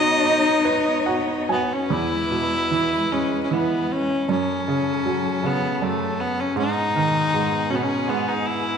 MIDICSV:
0, 0, Header, 1, 5, 480
1, 0, Start_track
1, 0, Key_signature, 4, "major"
1, 0, Tempo, 800000
1, 1130, Time_signature, 3, 2, 24, 8
1, 2562, Tempo, 761421
1, 5402, End_track
2, 0, Start_track
2, 0, Title_t, "Cello"
2, 0, Program_c, 0, 42
2, 0, Note_on_c, 0, 63, 78
2, 896, Note_off_c, 0, 63, 0
2, 5402, End_track
3, 0, Start_track
3, 0, Title_t, "String section"
3, 0, Program_c, 1, 48
3, 0, Note_on_c, 1, 59, 58
3, 0, Note_on_c, 1, 63, 54
3, 0, Note_on_c, 1, 73, 79
3, 1108, Note_off_c, 1, 73, 0
3, 1114, Note_off_c, 1, 63, 0
3, 1115, Note_off_c, 1, 59, 0
3, 1124, Note_on_c, 1, 71, 56
3, 1125, Note_on_c, 1, 56, 59
3, 1130, Note_on_c, 1, 64, 45
3, 2546, Note_off_c, 1, 56, 0
3, 2546, Note_off_c, 1, 71, 0
3, 2549, Note_off_c, 1, 64, 0
3, 2558, Note_on_c, 1, 69, 55
3, 2561, Note_on_c, 1, 54, 60
3, 2565, Note_on_c, 1, 61, 49
3, 3995, Note_off_c, 1, 69, 0
3, 3996, Note_off_c, 1, 54, 0
3, 3998, Note_off_c, 1, 61, 0
3, 4019, Note_on_c, 1, 47, 52
3, 4024, Note_on_c, 1, 68, 61
3, 4025, Note_on_c, 1, 59, 48
3, 5402, Note_off_c, 1, 47, 0
3, 5402, Note_off_c, 1, 59, 0
3, 5402, Note_off_c, 1, 68, 0
3, 5402, End_track
4, 0, Start_track
4, 0, Title_t, "Fiddle"
4, 0, Program_c, 2, 110
4, 0, Note_on_c, 2, 75, 92
4, 892, Note_off_c, 2, 75, 0
4, 911, Note_on_c, 2, 59, 70
4, 1039, Note_on_c, 2, 61, 73
4, 1048, Note_off_c, 2, 59, 0
4, 1158, Note_on_c, 2, 64, 93
4, 1167, Note_off_c, 2, 61, 0
4, 1874, Note_on_c, 2, 61, 77
4, 1883, Note_off_c, 2, 64, 0
4, 2054, Note_off_c, 2, 61, 0
4, 2057, Note_on_c, 2, 61, 55
4, 2119, Note_on_c, 2, 59, 68
4, 2128, Note_off_c, 2, 61, 0
4, 2350, Note_on_c, 2, 61, 79
4, 2359, Note_off_c, 2, 59, 0
4, 2574, Note_off_c, 2, 61, 0
4, 2582, Note_on_c, 2, 61, 83
4, 3313, Note_on_c, 2, 59, 82
4, 3322, Note_off_c, 2, 61, 0
4, 3490, Note_off_c, 2, 59, 0
4, 3490, Note_on_c, 2, 59, 49
4, 3551, Note_on_c, 2, 57, 67
4, 3561, Note_off_c, 2, 59, 0
4, 3780, Note_on_c, 2, 59, 78
4, 3789, Note_off_c, 2, 57, 0
4, 3904, Note_on_c, 2, 61, 70
4, 3914, Note_off_c, 2, 59, 0
4, 4017, Note_off_c, 2, 61, 0
4, 4020, Note_on_c, 2, 63, 93
4, 4725, Note_on_c, 2, 61, 80
4, 4735, Note_off_c, 2, 63, 0
4, 4757, Note_on_c, 2, 59, 69
4, 4766, Note_off_c, 2, 61, 0
4, 4803, Note_on_c, 2, 61, 79
4, 4813, Note_off_c, 2, 59, 0
4, 4973, Note_on_c, 2, 59, 69
4, 4983, Note_off_c, 2, 61, 0
4, 5087, Note_on_c, 2, 63, 69
4, 5097, Note_off_c, 2, 59, 0
4, 5204, Note_on_c, 2, 64, 84
4, 5214, Note_off_c, 2, 63, 0
4, 5402, Note_off_c, 2, 64, 0
4, 5402, End_track
5, 0, Start_track
5, 0, Title_t, "Upright piano"
5, 0, Program_c, 3, 0
5, 0, Control_c, 3, 64, 127
5, 0, Note_on_c, 3, 47, 59
5, 0, Note_on_c, 3, 54, 55
5, 152, Note_on_c, 3, 63, 51
5, 389, Note_on_c, 3, 71, 49
5, 389, Note_on_c, 3, 75, 51
5, 619, Note_off_c, 3, 75, 0
5, 637, Note_on_c, 3, 66, 45
5, 638, Note_on_c, 3, 78, 53
5, 863, Note_off_c, 3, 54, 0
5, 870, Note_off_c, 3, 78, 0
5, 893, Note_on_c, 3, 54, 39
5, 895, Note_on_c, 3, 80, 47
5, 1104, Note_off_c, 3, 63, 0
5, 1107, Note_off_c, 3, 47, 0
5, 1107, Note_off_c, 3, 71, 0
5, 1115, Note_off_c, 3, 66, 0
5, 1118, Note_off_c, 3, 80, 0
5, 1126, Note_off_c, 3, 54, 0
5, 1139, Control_c, 3, 64, 0
5, 1142, Note_on_c, 3, 40, 53
5, 1224, Control_c, 3, 64, 127
5, 1384, Note_on_c, 3, 47, 43
5, 1628, Note_on_c, 3, 52, 47
5, 1870, Note_on_c, 3, 56, 41
5, 2097, Note_off_c, 3, 52, 0
5, 2106, Note_on_c, 3, 52, 47
5, 2312, Note_off_c, 3, 47, 0
5, 2545, Note_off_c, 3, 40, 0
5, 2550, Note_off_c, 3, 56, 0
5, 2556, Note_off_c, 3, 52, 0
5, 2572, Control_c, 3, 64, 0
5, 2573, Note_on_c, 3, 42, 54
5, 2685, Control_c, 3, 64, 127
5, 2820, Note_on_c, 3, 49, 46
5, 3057, Note_on_c, 3, 54, 50
5, 3289, Note_off_c, 3, 49, 0
5, 3298, Note_on_c, 3, 49, 49
5, 3529, Note_off_c, 3, 42, 0
5, 3539, Note_on_c, 3, 42, 47
5, 3990, Note_off_c, 3, 54, 0
5, 3994, Note_off_c, 3, 49, 0
5, 4001, Note_off_c, 3, 42, 0
5, 4004, Note_on_c, 3, 44, 60
5, 4021, Control_c, 3, 64, 0
5, 4114, Control_c, 3, 64, 127
5, 4258, Note_on_c, 3, 51, 50
5, 4488, Note_off_c, 3, 44, 0
5, 4498, Note_on_c, 3, 44, 47
5, 4726, Note_on_c, 3, 47, 49
5, 4953, Note_off_c, 3, 44, 0
5, 4963, Note_on_c, 3, 44, 53
5, 5181, Note_off_c, 3, 51, 0
5, 5402, Note_off_c, 3, 44, 0
5, 5402, Note_off_c, 3, 47, 0
5, 5402, End_track
0, 0, End_of_file